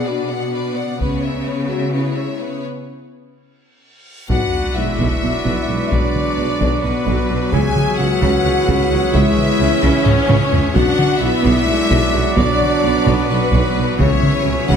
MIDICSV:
0, 0, Header, 1, 15, 480
1, 0, Start_track
1, 0, Tempo, 468019
1, 1033, Time_signature, 7, 3, 24, 8
1, 4883, Tempo, 462250
1, 15271, End_track
2, 0, Start_track
2, 0, Title_t, "Violin section"
2, 0, Program_c, 0, 48
2, 67, Note_on_c, 0, 74, 44
2, 311, Note_off_c, 0, 74, 0
2, 318, Note_on_c, 0, 78, 48
2, 556, Note_off_c, 0, 78, 0
2, 566, Note_on_c, 0, 74, 41
2, 783, Note_off_c, 0, 74, 0
2, 797, Note_on_c, 0, 78, 42
2, 1034, Note_off_c, 0, 78, 0
2, 1047, Note_on_c, 0, 73, 43
2, 1261, Note_off_c, 0, 73, 0
2, 1269, Note_on_c, 0, 76, 43
2, 1507, Note_off_c, 0, 76, 0
2, 1508, Note_on_c, 0, 73, 41
2, 1746, Note_off_c, 0, 73, 0
2, 1750, Note_on_c, 0, 76, 40
2, 1973, Note_on_c, 0, 73, 40
2, 1987, Note_off_c, 0, 76, 0
2, 2202, Note_off_c, 0, 73, 0
2, 2208, Note_on_c, 0, 76, 34
2, 2458, Note_off_c, 0, 76, 0
2, 2462, Note_on_c, 0, 73, 37
2, 2707, Note_off_c, 0, 73, 0
2, 4396, Note_on_c, 0, 78, 72
2, 4844, Note_off_c, 0, 78, 0
2, 4877, Note_on_c, 0, 76, 66
2, 6085, Note_off_c, 0, 76, 0
2, 6091, Note_on_c, 0, 74, 69
2, 7028, Note_on_c, 0, 71, 66
2, 7045, Note_off_c, 0, 74, 0
2, 7752, Note_off_c, 0, 71, 0
2, 7754, Note_on_c, 0, 80, 83
2, 8219, Note_on_c, 0, 78, 83
2, 8226, Note_off_c, 0, 80, 0
2, 9410, Note_on_c, 0, 76, 83
2, 9424, Note_off_c, 0, 78, 0
2, 10358, Note_off_c, 0, 76, 0
2, 10384, Note_on_c, 0, 73, 95
2, 11105, Note_off_c, 0, 73, 0
2, 11105, Note_on_c, 0, 78, 93
2, 11562, Note_on_c, 0, 76, 91
2, 11575, Note_off_c, 0, 78, 0
2, 12777, Note_off_c, 0, 76, 0
2, 12779, Note_on_c, 0, 74, 87
2, 13729, Note_off_c, 0, 74, 0
2, 13737, Note_on_c, 0, 71, 89
2, 14455, Note_off_c, 0, 71, 0
2, 14468, Note_on_c, 0, 73, 99
2, 15184, Note_off_c, 0, 73, 0
2, 15198, Note_on_c, 0, 78, 76
2, 15271, Note_off_c, 0, 78, 0
2, 15271, End_track
3, 0, Start_track
3, 0, Title_t, "Trumpet"
3, 0, Program_c, 1, 56
3, 4406, Note_on_c, 1, 74, 58
3, 7719, Note_off_c, 1, 74, 0
3, 7759, Note_on_c, 1, 73, 72
3, 10777, Note_off_c, 1, 73, 0
3, 11107, Note_on_c, 1, 74, 80
3, 14436, Note_off_c, 1, 74, 0
3, 14460, Note_on_c, 1, 73, 77
3, 15271, Note_off_c, 1, 73, 0
3, 15271, End_track
4, 0, Start_track
4, 0, Title_t, "Violin section"
4, 0, Program_c, 2, 48
4, 72, Note_on_c, 2, 71, 45
4, 310, Note_on_c, 2, 74, 44
4, 313, Note_off_c, 2, 71, 0
4, 538, Note_on_c, 2, 71, 45
4, 552, Note_off_c, 2, 74, 0
4, 768, Note_off_c, 2, 71, 0
4, 785, Note_on_c, 2, 74, 50
4, 1028, Note_off_c, 2, 74, 0
4, 1030, Note_on_c, 2, 71, 50
4, 1252, Note_off_c, 2, 71, 0
4, 1265, Note_on_c, 2, 73, 42
4, 1496, Note_on_c, 2, 71, 45
4, 1505, Note_off_c, 2, 73, 0
4, 1740, Note_off_c, 2, 71, 0
4, 1750, Note_on_c, 2, 73, 40
4, 1987, Note_off_c, 2, 73, 0
4, 1987, Note_on_c, 2, 71, 40
4, 2210, Note_off_c, 2, 71, 0
4, 2237, Note_on_c, 2, 73, 36
4, 2467, Note_on_c, 2, 71, 39
4, 2473, Note_off_c, 2, 73, 0
4, 2710, Note_off_c, 2, 71, 0
4, 4412, Note_on_c, 2, 78, 68
4, 4852, Note_off_c, 2, 78, 0
4, 4879, Note_on_c, 2, 76, 64
4, 6085, Note_off_c, 2, 76, 0
4, 6088, Note_on_c, 2, 74, 76
4, 7044, Note_off_c, 2, 74, 0
4, 7044, Note_on_c, 2, 71, 68
4, 7746, Note_off_c, 2, 71, 0
4, 7765, Note_on_c, 2, 80, 82
4, 8236, Note_on_c, 2, 78, 77
4, 8241, Note_off_c, 2, 80, 0
4, 9409, Note_off_c, 2, 78, 0
4, 9437, Note_on_c, 2, 76, 94
4, 10377, Note_on_c, 2, 73, 83
4, 10390, Note_off_c, 2, 76, 0
4, 11101, Note_off_c, 2, 73, 0
4, 11105, Note_on_c, 2, 78, 90
4, 11584, Note_off_c, 2, 78, 0
4, 11587, Note_on_c, 2, 76, 101
4, 12789, Note_on_c, 2, 74, 94
4, 12790, Note_off_c, 2, 76, 0
4, 13734, Note_off_c, 2, 74, 0
4, 13761, Note_on_c, 2, 71, 83
4, 14468, Note_on_c, 2, 73, 88
4, 14481, Note_off_c, 2, 71, 0
4, 15184, Note_off_c, 2, 73, 0
4, 15198, Note_on_c, 2, 78, 79
4, 15271, Note_off_c, 2, 78, 0
4, 15271, End_track
5, 0, Start_track
5, 0, Title_t, "Pipe organ"
5, 0, Program_c, 3, 19
5, 4402, Note_on_c, 3, 62, 54
5, 4402, Note_on_c, 3, 71, 49
5, 4407, Note_on_c, 3, 66, 50
5, 4410, Note_on_c, 3, 78, 55
5, 7717, Note_off_c, 3, 62, 0
5, 7717, Note_off_c, 3, 71, 0
5, 7719, Note_off_c, 3, 66, 0
5, 7721, Note_off_c, 3, 78, 0
5, 7749, Note_on_c, 3, 61, 67
5, 7751, Note_on_c, 3, 71, 60
5, 7754, Note_on_c, 3, 68, 63
5, 7756, Note_on_c, 3, 76, 65
5, 11061, Note_off_c, 3, 71, 0
5, 11092, Note_on_c, 3, 71, 76
5, 11095, Note_on_c, 3, 66, 73
5, 11099, Note_on_c, 3, 78, 77
5, 11102, Note_off_c, 3, 61, 0
5, 11102, Note_on_c, 3, 62, 75
5, 11104, Note_off_c, 3, 68, 0
5, 11105, Note_off_c, 3, 76, 0
5, 14429, Note_off_c, 3, 71, 0
5, 14471, Note_on_c, 3, 61, 68
5, 14472, Note_off_c, 3, 66, 0
5, 14473, Note_on_c, 3, 68, 73
5, 14473, Note_on_c, 3, 71, 70
5, 14474, Note_off_c, 3, 78, 0
5, 14475, Note_off_c, 3, 62, 0
5, 14475, Note_on_c, 3, 76, 75
5, 15271, Note_off_c, 3, 61, 0
5, 15271, Note_off_c, 3, 68, 0
5, 15271, Note_off_c, 3, 71, 0
5, 15271, Note_off_c, 3, 76, 0
5, 15271, End_track
6, 0, Start_track
6, 0, Title_t, "French horn section"
6, 0, Program_c, 4, 60
6, 76, Note_on_c, 4, 66, 73
6, 1027, Note_on_c, 4, 59, 66
6, 1030, Note_off_c, 4, 66, 0
6, 1729, Note_off_c, 4, 59, 0
6, 1730, Note_on_c, 4, 66, 70
6, 1977, Note_off_c, 4, 66, 0
6, 1981, Note_on_c, 4, 64, 56
6, 2708, Note_off_c, 4, 64, 0
6, 4406, Note_on_c, 4, 66, 75
6, 4849, Note_off_c, 4, 66, 0
6, 4882, Note_on_c, 4, 64, 82
6, 6087, Note_off_c, 4, 64, 0
6, 6098, Note_on_c, 4, 62, 73
6, 7027, Note_on_c, 4, 59, 77
6, 7030, Note_off_c, 4, 62, 0
6, 7737, Note_off_c, 4, 59, 0
6, 7764, Note_on_c, 4, 68, 88
6, 8240, Note_off_c, 4, 68, 0
6, 8243, Note_on_c, 4, 66, 100
6, 9431, Note_on_c, 4, 64, 104
6, 9436, Note_off_c, 4, 66, 0
6, 10387, Note_off_c, 4, 64, 0
6, 10393, Note_on_c, 4, 61, 99
6, 11090, Note_on_c, 4, 66, 104
6, 11095, Note_off_c, 4, 61, 0
6, 11577, Note_off_c, 4, 66, 0
6, 11581, Note_on_c, 4, 64, 109
6, 12603, Note_off_c, 4, 64, 0
6, 12779, Note_on_c, 4, 62, 104
6, 13729, Note_off_c, 4, 62, 0
6, 13741, Note_on_c, 4, 59, 98
6, 14457, Note_off_c, 4, 59, 0
6, 14480, Note_on_c, 4, 61, 88
6, 15200, Note_on_c, 4, 66, 106
6, 15205, Note_off_c, 4, 61, 0
6, 15271, Note_off_c, 4, 66, 0
6, 15271, End_track
7, 0, Start_track
7, 0, Title_t, "Trombone section"
7, 0, Program_c, 5, 61
7, 4406, Note_on_c, 5, 54, 59
7, 4417, Note_on_c, 5, 59, 55
7, 7719, Note_off_c, 5, 54, 0
7, 7724, Note_off_c, 5, 59, 0
7, 7759, Note_on_c, 5, 59, 73
7, 7761, Note_on_c, 5, 52, 68
7, 11065, Note_off_c, 5, 59, 0
7, 11066, Note_off_c, 5, 52, 0
7, 11095, Note_on_c, 5, 54, 82
7, 11095, Note_on_c, 5, 59, 71
7, 14281, Note_off_c, 5, 54, 0
7, 14281, Note_off_c, 5, 59, 0
7, 14458, Note_on_c, 5, 52, 85
7, 14460, Note_on_c, 5, 59, 79
7, 15271, Note_off_c, 5, 52, 0
7, 15271, Note_off_c, 5, 59, 0
7, 15271, End_track
8, 0, Start_track
8, 0, Title_t, "Viola section"
8, 0, Program_c, 6, 48
8, 70, Note_on_c, 6, 62, 46
8, 306, Note_on_c, 6, 59, 45
8, 313, Note_off_c, 6, 62, 0
8, 539, Note_on_c, 6, 62, 39
8, 550, Note_off_c, 6, 59, 0
8, 769, Note_off_c, 6, 62, 0
8, 774, Note_on_c, 6, 59, 39
8, 1003, Note_off_c, 6, 59, 0
8, 1015, Note_on_c, 6, 59, 46
8, 1244, Note_off_c, 6, 59, 0
8, 1253, Note_on_c, 6, 56, 40
8, 1485, Note_on_c, 6, 59, 48
8, 1500, Note_off_c, 6, 56, 0
8, 1730, Note_on_c, 6, 56, 44
8, 1734, Note_off_c, 6, 59, 0
8, 1968, Note_on_c, 6, 59, 39
8, 1977, Note_off_c, 6, 56, 0
8, 2200, Note_off_c, 6, 59, 0
8, 2216, Note_on_c, 6, 56, 33
8, 2448, Note_on_c, 6, 59, 33
8, 2462, Note_off_c, 6, 56, 0
8, 2700, Note_off_c, 6, 59, 0
8, 4876, Note_on_c, 6, 56, 63
8, 5327, Note_off_c, 6, 56, 0
8, 5368, Note_on_c, 6, 54, 51
8, 5848, Note_off_c, 6, 54, 0
8, 5850, Note_on_c, 6, 56, 58
8, 7021, Note_off_c, 6, 56, 0
8, 7036, Note_on_c, 6, 54, 72
8, 8679, Note_off_c, 6, 54, 0
8, 8713, Note_on_c, 6, 52, 64
8, 9192, Note_off_c, 6, 52, 0
8, 9200, Note_on_c, 6, 54, 75
8, 9422, Note_on_c, 6, 56, 77
8, 9437, Note_off_c, 6, 54, 0
8, 9897, Note_off_c, 6, 56, 0
8, 9908, Note_on_c, 6, 61, 92
8, 11102, Note_on_c, 6, 62, 86
8, 11105, Note_off_c, 6, 61, 0
8, 11573, Note_off_c, 6, 62, 0
8, 11579, Note_on_c, 6, 59, 85
8, 12057, Note_on_c, 6, 56, 87
8, 12064, Note_off_c, 6, 59, 0
8, 12769, Note_off_c, 6, 56, 0
8, 12787, Note_on_c, 6, 54, 73
8, 13264, Note_on_c, 6, 59, 91
8, 13270, Note_off_c, 6, 54, 0
8, 13744, Note_on_c, 6, 54, 73
8, 13750, Note_off_c, 6, 59, 0
8, 14459, Note_off_c, 6, 54, 0
8, 14477, Note_on_c, 6, 52, 70
8, 14954, Note_on_c, 6, 54, 79
8, 14961, Note_off_c, 6, 52, 0
8, 15271, Note_off_c, 6, 54, 0
8, 15271, End_track
9, 0, Start_track
9, 0, Title_t, "Timpani"
9, 0, Program_c, 7, 47
9, 14467, Note_on_c, 7, 49, 39
9, 14531, Note_off_c, 7, 49, 0
9, 14544, Note_on_c, 7, 49, 39
9, 14612, Note_off_c, 7, 49, 0
9, 14625, Note_on_c, 7, 49, 37
9, 14693, Note_off_c, 7, 49, 0
9, 14705, Note_on_c, 7, 49, 35
9, 14763, Note_off_c, 7, 49, 0
9, 14775, Note_on_c, 7, 49, 38
9, 14848, Note_off_c, 7, 49, 0
9, 14947, Note_on_c, 7, 49, 41
9, 15011, Note_off_c, 7, 49, 0
9, 15024, Note_on_c, 7, 49, 41
9, 15090, Note_off_c, 7, 49, 0
9, 15102, Note_on_c, 7, 49, 44
9, 15175, Note_off_c, 7, 49, 0
9, 15189, Note_on_c, 7, 49, 43
9, 15254, Note_off_c, 7, 49, 0
9, 15271, End_track
10, 0, Start_track
10, 0, Title_t, "Cello section"
10, 0, Program_c, 8, 48
10, 0, Note_on_c, 8, 47, 50
10, 989, Note_off_c, 8, 47, 0
10, 1025, Note_on_c, 8, 49, 54
10, 2706, Note_off_c, 8, 49, 0
10, 4410, Note_on_c, 8, 47, 61
10, 4492, Note_off_c, 8, 47, 0
10, 4882, Note_on_c, 8, 47, 41
10, 4965, Note_off_c, 8, 47, 0
10, 5135, Note_on_c, 8, 47, 59
10, 5218, Note_off_c, 8, 47, 0
10, 5367, Note_on_c, 8, 47, 50
10, 5450, Note_off_c, 8, 47, 0
10, 5600, Note_on_c, 8, 47, 64
10, 5683, Note_off_c, 8, 47, 0
10, 5840, Note_on_c, 8, 47, 43
10, 5923, Note_off_c, 8, 47, 0
10, 6071, Note_on_c, 8, 47, 55
10, 6154, Note_off_c, 8, 47, 0
10, 6566, Note_on_c, 8, 47, 51
10, 6649, Note_off_c, 8, 47, 0
10, 6803, Note_on_c, 8, 47, 73
10, 6886, Note_off_c, 8, 47, 0
10, 7047, Note_on_c, 8, 47, 52
10, 7130, Note_off_c, 8, 47, 0
10, 7281, Note_on_c, 8, 47, 70
10, 7364, Note_off_c, 8, 47, 0
10, 7520, Note_on_c, 8, 47, 50
10, 7603, Note_off_c, 8, 47, 0
10, 7750, Note_on_c, 8, 49, 75
10, 7833, Note_off_c, 8, 49, 0
10, 8236, Note_on_c, 8, 49, 58
10, 8319, Note_off_c, 8, 49, 0
10, 8466, Note_on_c, 8, 49, 83
10, 8549, Note_off_c, 8, 49, 0
10, 8708, Note_on_c, 8, 49, 60
10, 8791, Note_off_c, 8, 49, 0
10, 8944, Note_on_c, 8, 49, 77
10, 9027, Note_off_c, 8, 49, 0
10, 9194, Note_on_c, 8, 49, 56
10, 9277, Note_off_c, 8, 49, 0
10, 9426, Note_on_c, 8, 49, 73
10, 9509, Note_off_c, 8, 49, 0
10, 9910, Note_on_c, 8, 49, 61
10, 9994, Note_off_c, 8, 49, 0
10, 10140, Note_on_c, 8, 49, 88
10, 10223, Note_off_c, 8, 49, 0
10, 10380, Note_on_c, 8, 49, 65
10, 10463, Note_off_c, 8, 49, 0
10, 10622, Note_on_c, 8, 49, 91
10, 10705, Note_off_c, 8, 49, 0
10, 10862, Note_on_c, 8, 49, 64
10, 10945, Note_off_c, 8, 49, 0
10, 11107, Note_on_c, 8, 47, 76
10, 11190, Note_off_c, 8, 47, 0
10, 11584, Note_on_c, 8, 47, 56
10, 11667, Note_off_c, 8, 47, 0
10, 11824, Note_on_c, 8, 47, 86
10, 11907, Note_off_c, 8, 47, 0
10, 12070, Note_on_c, 8, 47, 63
10, 12153, Note_off_c, 8, 47, 0
10, 12315, Note_on_c, 8, 47, 92
10, 12398, Note_off_c, 8, 47, 0
10, 12548, Note_on_c, 8, 47, 65
10, 12631, Note_off_c, 8, 47, 0
10, 12786, Note_on_c, 8, 47, 88
10, 12869, Note_off_c, 8, 47, 0
10, 13268, Note_on_c, 8, 47, 58
10, 13351, Note_off_c, 8, 47, 0
10, 13501, Note_on_c, 8, 47, 88
10, 13584, Note_off_c, 8, 47, 0
10, 13747, Note_on_c, 8, 47, 62
10, 13830, Note_off_c, 8, 47, 0
10, 13979, Note_on_c, 8, 47, 88
10, 14062, Note_off_c, 8, 47, 0
10, 14224, Note_on_c, 8, 47, 58
10, 14307, Note_off_c, 8, 47, 0
10, 14455, Note_on_c, 8, 49, 81
10, 14538, Note_off_c, 8, 49, 0
10, 14950, Note_on_c, 8, 49, 62
10, 15033, Note_off_c, 8, 49, 0
10, 15196, Note_on_c, 8, 49, 79
10, 15271, Note_off_c, 8, 49, 0
10, 15271, End_track
11, 0, Start_track
11, 0, Title_t, "Double bass section"
11, 0, Program_c, 10, 48
11, 1022, Note_on_c, 10, 37, 46
11, 1469, Note_off_c, 10, 37, 0
11, 4405, Note_on_c, 10, 35, 56
11, 4487, Note_off_c, 10, 35, 0
11, 4887, Note_on_c, 10, 35, 42
11, 4970, Note_off_c, 10, 35, 0
11, 5128, Note_on_c, 10, 35, 62
11, 5211, Note_off_c, 10, 35, 0
11, 5364, Note_on_c, 10, 35, 45
11, 5447, Note_off_c, 10, 35, 0
11, 5612, Note_on_c, 10, 35, 64
11, 5695, Note_off_c, 10, 35, 0
11, 5850, Note_on_c, 10, 35, 46
11, 5933, Note_off_c, 10, 35, 0
11, 6080, Note_on_c, 10, 35, 61
11, 6163, Note_off_c, 10, 35, 0
11, 6566, Note_on_c, 10, 35, 47
11, 6649, Note_off_c, 10, 35, 0
11, 6804, Note_on_c, 10, 35, 70
11, 6887, Note_off_c, 10, 35, 0
11, 7045, Note_on_c, 10, 35, 52
11, 7128, Note_off_c, 10, 35, 0
11, 7286, Note_on_c, 10, 35, 78
11, 7369, Note_off_c, 10, 35, 0
11, 7525, Note_on_c, 10, 35, 48
11, 7608, Note_off_c, 10, 35, 0
11, 7763, Note_on_c, 10, 37, 70
11, 7846, Note_off_c, 10, 37, 0
11, 8233, Note_on_c, 10, 37, 51
11, 8317, Note_off_c, 10, 37, 0
11, 8473, Note_on_c, 10, 37, 83
11, 8556, Note_off_c, 10, 37, 0
11, 8709, Note_on_c, 10, 37, 61
11, 8792, Note_off_c, 10, 37, 0
11, 8948, Note_on_c, 10, 37, 88
11, 9031, Note_off_c, 10, 37, 0
11, 9188, Note_on_c, 10, 37, 58
11, 9271, Note_off_c, 10, 37, 0
11, 9437, Note_on_c, 10, 37, 76
11, 9520, Note_off_c, 10, 37, 0
11, 9909, Note_on_c, 10, 37, 56
11, 9992, Note_off_c, 10, 37, 0
11, 10150, Note_on_c, 10, 37, 84
11, 10233, Note_off_c, 10, 37, 0
11, 10382, Note_on_c, 10, 37, 60
11, 10465, Note_off_c, 10, 37, 0
11, 10624, Note_on_c, 10, 37, 86
11, 10707, Note_off_c, 10, 37, 0
11, 10858, Note_on_c, 10, 37, 62
11, 10941, Note_off_c, 10, 37, 0
11, 11104, Note_on_c, 10, 35, 83
11, 11187, Note_off_c, 10, 35, 0
11, 11581, Note_on_c, 10, 35, 64
11, 11665, Note_off_c, 10, 35, 0
11, 11820, Note_on_c, 10, 35, 83
11, 11903, Note_off_c, 10, 35, 0
11, 12076, Note_on_c, 10, 35, 67
11, 12159, Note_off_c, 10, 35, 0
11, 12301, Note_on_c, 10, 35, 81
11, 12384, Note_off_c, 10, 35, 0
11, 12543, Note_on_c, 10, 35, 61
11, 12626, Note_off_c, 10, 35, 0
11, 12781, Note_on_c, 10, 35, 85
11, 12865, Note_off_c, 10, 35, 0
11, 13267, Note_on_c, 10, 35, 54
11, 13350, Note_off_c, 10, 35, 0
11, 13506, Note_on_c, 10, 35, 81
11, 13589, Note_off_c, 10, 35, 0
11, 13755, Note_on_c, 10, 35, 62
11, 13838, Note_off_c, 10, 35, 0
11, 13991, Note_on_c, 10, 35, 91
11, 14074, Note_off_c, 10, 35, 0
11, 14238, Note_on_c, 10, 35, 63
11, 14321, Note_off_c, 10, 35, 0
11, 14468, Note_on_c, 10, 37, 78
11, 14551, Note_off_c, 10, 37, 0
11, 14948, Note_on_c, 10, 37, 58
11, 15032, Note_off_c, 10, 37, 0
11, 15191, Note_on_c, 10, 37, 77
11, 15271, Note_off_c, 10, 37, 0
11, 15271, End_track
12, 0, Start_track
12, 0, Title_t, "Tuba"
12, 0, Program_c, 11, 58
12, 4401, Note_on_c, 11, 35, 58
12, 4497, Note_off_c, 11, 35, 0
12, 4879, Note_on_c, 11, 35, 46
12, 4976, Note_off_c, 11, 35, 0
12, 5112, Note_on_c, 11, 35, 62
12, 5211, Note_off_c, 11, 35, 0
12, 5366, Note_on_c, 11, 35, 45
12, 5462, Note_off_c, 11, 35, 0
12, 5594, Note_on_c, 11, 35, 62
12, 5693, Note_off_c, 11, 35, 0
12, 5836, Note_on_c, 11, 35, 49
12, 5934, Note_off_c, 11, 35, 0
12, 6076, Note_on_c, 11, 35, 57
12, 6175, Note_off_c, 11, 35, 0
12, 6561, Note_on_c, 11, 35, 48
12, 6658, Note_off_c, 11, 35, 0
12, 6786, Note_on_c, 11, 35, 77
12, 6885, Note_off_c, 11, 35, 0
12, 7029, Note_on_c, 11, 35, 50
12, 7127, Note_off_c, 11, 35, 0
12, 7278, Note_on_c, 11, 35, 71
12, 7374, Note_off_c, 11, 35, 0
12, 7509, Note_on_c, 11, 35, 55
12, 7607, Note_off_c, 11, 35, 0
12, 7753, Note_on_c, 11, 37, 72
12, 7850, Note_off_c, 11, 37, 0
12, 8229, Note_on_c, 11, 37, 57
12, 8327, Note_off_c, 11, 37, 0
12, 8471, Note_on_c, 11, 37, 79
12, 8567, Note_off_c, 11, 37, 0
12, 8712, Note_on_c, 11, 37, 56
12, 8808, Note_off_c, 11, 37, 0
12, 8940, Note_on_c, 11, 37, 75
12, 9038, Note_off_c, 11, 37, 0
12, 9179, Note_on_c, 11, 37, 62
12, 9278, Note_off_c, 11, 37, 0
12, 9409, Note_on_c, 11, 37, 85
12, 9509, Note_off_c, 11, 37, 0
12, 9891, Note_on_c, 11, 37, 60
12, 9990, Note_off_c, 11, 37, 0
12, 10139, Note_on_c, 11, 37, 83
12, 10237, Note_off_c, 11, 37, 0
12, 10373, Note_on_c, 11, 37, 65
12, 10472, Note_off_c, 11, 37, 0
12, 10616, Note_on_c, 11, 37, 83
12, 10714, Note_off_c, 11, 37, 0
12, 10856, Note_on_c, 11, 37, 71
12, 10954, Note_off_c, 11, 37, 0
12, 11092, Note_on_c, 11, 35, 84
12, 11191, Note_off_c, 11, 35, 0
12, 11580, Note_on_c, 11, 35, 70
12, 11677, Note_off_c, 11, 35, 0
12, 11815, Note_on_c, 11, 35, 92
12, 11914, Note_off_c, 11, 35, 0
12, 12055, Note_on_c, 11, 35, 68
12, 12154, Note_off_c, 11, 35, 0
12, 12295, Note_on_c, 11, 35, 82
12, 12394, Note_off_c, 11, 35, 0
12, 12534, Note_on_c, 11, 35, 71
12, 12633, Note_off_c, 11, 35, 0
12, 12773, Note_on_c, 11, 35, 78
12, 12872, Note_off_c, 11, 35, 0
12, 13260, Note_on_c, 11, 35, 59
12, 13358, Note_off_c, 11, 35, 0
12, 13508, Note_on_c, 11, 35, 81
12, 13606, Note_off_c, 11, 35, 0
12, 13745, Note_on_c, 11, 35, 58
12, 13844, Note_off_c, 11, 35, 0
12, 13990, Note_on_c, 11, 35, 85
12, 14087, Note_off_c, 11, 35, 0
12, 14235, Note_on_c, 11, 35, 62
12, 14331, Note_off_c, 11, 35, 0
12, 14474, Note_on_c, 11, 37, 81
12, 14571, Note_off_c, 11, 37, 0
12, 14955, Note_on_c, 11, 37, 54
12, 15053, Note_off_c, 11, 37, 0
12, 15193, Note_on_c, 11, 37, 86
12, 15271, Note_off_c, 11, 37, 0
12, 15271, End_track
13, 0, Start_track
13, 0, Title_t, "Reverse cymbal"
13, 0, Program_c, 12, 119
13, 2708, Note_on_c, 12, 60, 44
13, 4403, Note_off_c, 12, 60, 0
13, 15271, End_track
14, 0, Start_track
14, 0, Title_t, "Sub drop"
14, 0, Program_c, 13, 103
14, 4404, Note_on_c, 13, 60, 67
14, 6087, Note_off_c, 13, 60, 0
14, 15271, End_track
15, 0, Start_track
15, 0, Title_t, "Taiko and cinematic ensemble drums"
15, 1030, Note_on_c, 9, 41, 52
15, 1132, Note_off_c, 9, 41, 0
15, 4406, Note_on_c, 9, 41, 80
15, 4509, Note_off_c, 9, 41, 0
15, 5123, Note_on_c, 9, 41, 69
15, 5227, Note_off_c, 9, 41, 0
15, 5604, Note_on_c, 9, 41, 80
15, 5708, Note_off_c, 9, 41, 0
15, 6085, Note_on_c, 9, 41, 85
15, 6189, Note_off_c, 9, 41, 0
15, 6332, Note_on_c, 9, 47, 38
15, 6436, Note_off_c, 9, 47, 0
15, 6806, Note_on_c, 9, 41, 74
15, 6910, Note_off_c, 9, 41, 0
15, 7278, Note_on_c, 9, 41, 74
15, 7381, Note_off_c, 9, 41, 0
15, 7756, Note_on_c, 9, 41, 86
15, 7860, Note_off_c, 9, 41, 0
15, 7997, Note_on_c, 9, 47, 46
15, 8101, Note_off_c, 9, 47, 0
15, 8473, Note_on_c, 9, 41, 70
15, 8577, Note_off_c, 9, 41, 0
15, 8955, Note_on_c, 9, 41, 84
15, 9059, Note_off_c, 9, 41, 0
15, 9433, Note_on_c, 9, 41, 96
15, 9537, Note_off_c, 9, 41, 0
15, 9677, Note_on_c, 9, 47, 49
15, 9780, Note_off_c, 9, 47, 0
15, 10149, Note_on_c, 9, 41, 80
15, 10253, Note_off_c, 9, 41, 0
15, 10386, Note_on_c, 9, 45, 69
15, 10490, Note_off_c, 9, 45, 0
15, 10634, Note_on_c, 9, 45, 88
15, 10738, Note_off_c, 9, 45, 0
15, 10869, Note_on_c, 9, 43, 89
15, 10973, Note_off_c, 9, 43, 0
15, 11109, Note_on_c, 9, 41, 96
15, 11213, Note_off_c, 9, 41, 0
15, 11352, Note_on_c, 9, 47, 50
15, 11456, Note_off_c, 9, 47, 0
15, 11831, Note_on_c, 9, 41, 84
15, 11935, Note_off_c, 9, 41, 0
15, 12306, Note_on_c, 9, 41, 84
15, 12410, Note_off_c, 9, 41, 0
15, 12790, Note_on_c, 9, 41, 94
15, 12894, Note_off_c, 9, 41, 0
15, 13034, Note_on_c, 9, 47, 47
15, 13138, Note_off_c, 9, 47, 0
15, 13512, Note_on_c, 9, 41, 76
15, 13616, Note_off_c, 9, 41, 0
15, 13987, Note_on_c, 9, 41, 92
15, 14091, Note_off_c, 9, 41, 0
15, 14473, Note_on_c, 9, 41, 92
15, 14577, Note_off_c, 9, 41, 0
15, 14716, Note_on_c, 9, 47, 51
15, 14820, Note_off_c, 9, 47, 0
15, 15199, Note_on_c, 9, 41, 89
15, 15271, Note_off_c, 9, 41, 0
15, 15271, End_track
0, 0, End_of_file